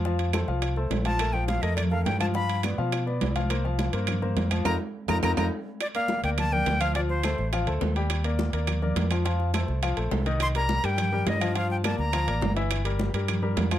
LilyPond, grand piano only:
\new Staff \with { instrumentName = "Grand piano" } { \time 4/4 \key g \minor \tempo 4 = 209 <f f' f''>4 <a a' c''>8 <f f' f''>4 <a a' c''>4 <f f' f''>8 | <a a' bes'>8 <f f' f''>4 <a a' bes'>4 <a a' bes'>4 <f f' f''>8 | <f f' f''>4 <b b' d''>8 <f f' f''>4 <b b' d''>4 <f f' f''>8 | <bes bes' c''>8 <f f' f''>4 <bes bes' c''>4 <bes bes' c''>4 <f f' f''>8 |
<ees' f' bes'>8 r4 <ees' f' bes'>8 <ees' f' bes'>8 <ees' f' bes'>8 r4 | r8 <bes bes' d''>4 <bes bes' d''>4 <bes bes' d''>4 <f f' f''>8 | <f f' f''>4 <a a' c''>4 <f f' f''>8 <a a' c''>4 <g g' g''>8~ | <g g' g''>8 <bes bes' d''>4 <bes bes' d''>4 <bes bes' d''>4 <f f' f''>8 |
<f f' f''>4 <a a' c''>4 <f f' f''>8 <a a' c''>4 <ees ees' ees''>8~ | <ees ees' ees''>8 <g g' bes'>4 <g g' bes'>4 <g g' bes'>4 <f f' f''>8 | <f f' f''>4 <bes bes' d''>4 <f f' f''>8 <bes bes' d''>4 <e e' e''>8~ | <e e' e''>8 <g g' bes'>4 <g g' bes'>4 <g g' bes'>4 <f f' f''>8 | }